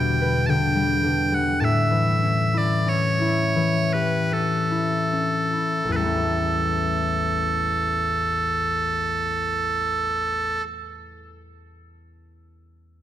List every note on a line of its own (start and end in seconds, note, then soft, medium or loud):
0.00 1.66 E2 medium
0.00 0.52 B2 medium
0.00 0.52 G3 medium
0.00 0.46 G5 medium
0.21 2.26 B4 soft
0.46 1.03 D3 medium
0.46 1.34 G5 medium
0.46 0.50 A5 medium
0.76 1.08 G3 soft
1.04 1.66 D3 soft
1.32 1.66 G3 soft
1.32 1.60 F#5 medium
1.60 5.51 A2 medium
1.60 1.64 A5 medium
1.64 2.58 E5 medium
1.91 3.55 E3 soft
2.23 2.86 C#4 soft
2.54 3.21 E4 soft
2.54 2.89 D5 medium
2.86 4.31 C#4 soft
2.86 3.93 C#5 medium
3.21 4.71 E4 soft
3.56 5.92 E3 medium
3.93 6.30 G4 soft
3.93 4.33 B4 medium
4.31 5.12 C#4 soft
4.31 5.92 A4 medium
4.71 5.53 E4 soft
5.13 6.05 C#4 soft
5.53 8.14 E4 soft
5.85 10.51 A1 soft
5.89 10.55 E2 soft
5.89 5.96 B4 medium
5.93 10.60 E3 soft
5.93 10.62 A4 medium
5.98 10.64 G3 soft
6.02 10.68 A3 soft
6.02 10.72 C#4 soft